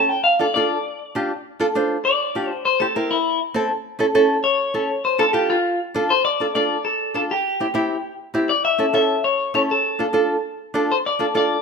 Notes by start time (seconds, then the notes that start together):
Already playing: C#4 E4 A4
0.09 G5
0.24 F5
0.39 D4 F4 A4 D5
0.54 D4 F4 A4 D5
1.15 D4 F4 G4
1.60 D4 F4 A4
1.75 D4 F4 C5
2.05 D5
2.35 D4 F4 G4
2.49 C5
2.65 C5
2.80 C4 E4 G4 A4
2.96 C4 E4 G4 A#4
3.11 E4
3.54 C4 E4 A4
3.99 C#4 E4 A4
4.15 C#4 E4 A4
4.44 C#5
4.74 C#4 E4 A4
5.05 C5
5.18 D4 F4 A4
5.33 D4 F4 G4
5.50 F4
5.94 D4 F4 A4
6.10 C5
6.25 D5
6.40 D4 F4 A4
6.55 D4 F4 A4 D5
6.85 A4
7.14 D4 F4 A4
7.31 G4
7.60 C4 E4 G4
7.74 C4 E4 G4
8.34 C4 E4 G4
8.49 D5
8.65 E5
8.78 C#4 E4 A4
8.93 C#4 E4 A4 E5
9.24 C#5
9.54 C#4 E4 A4 C#5
9.71 A4
9.99 D4 F4 A4
10.13 D4 F4 A4
10.74 D4 F4 A4
10.92 C5
11.06 D5
11.19 D4 F4 A4
11.35 D4 F4 A4 D5